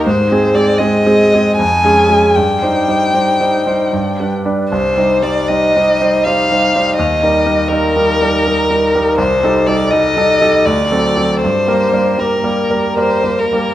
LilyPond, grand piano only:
\new Staff \with { instrumentName = "Grand piano" } { \time 3/4 \key c \minor \tempo 4 = 79 \tuplet 3/2 { aes,8 <aes c' aes'>8 <aes c' aes'>8 <aes c' aes'>8 <aes c' aes'>8 <aes c' aes'>8 f,8 <aes des' aes'>8 <aes des' aes'>8 } | \tuplet 3/2 { g,8 <g ees' c''>8 <g ees' c''>8 <g ees' c''>8 <g ees' c''>8 <g ees' c''>8 g,8 <g d' b'>8 <g d' b'>8 } | \tuplet 3/2 { c,8 <g ees' c''>8 <g ees' c''>8 <g ees' c''>8 <g ees' c''>8 <g ees' c''>8 <g ees' c''>8 <g ees' c''>8 <g ees' c''>8 } | \tuplet 3/2 { ees,8 <g ees' bes'>8 <g ees' bes'>8 <g ees' bes'>8 <g ees' bes'>8 <g ees' bes'>8 <g ees' bes'>8 <g ees' bes'>8 <g ees' bes'>8 } |
\key g \minor \tuplet 3/2 { c,8 <g ees' a'>8 <g ees' a'>8 <g ees' a'>8 <g ees' a'>8 <g ees' a'>8 d,8 <fis c' a'>8 <fis c' a'>8 } | \tuplet 3/2 { g,8 <g bes bes'>8 <g bes bes'>8 <g bes bes'>8 <g bes bes'>8 <g bes bes'>8 <g bes bes'>8 <g bes bes'>8 <g bes bes'>8 } | }